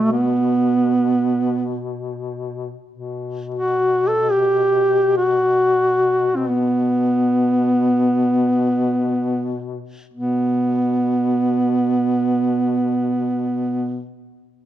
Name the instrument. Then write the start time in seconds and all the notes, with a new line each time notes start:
duduk
Already playing: B2 A3
0.13 B3
2.91 B2
3.54 F#4
4.08 A4
4.32 G4
5.17 F#4
6.36 C4
6.49 B3
10.14 B2 B3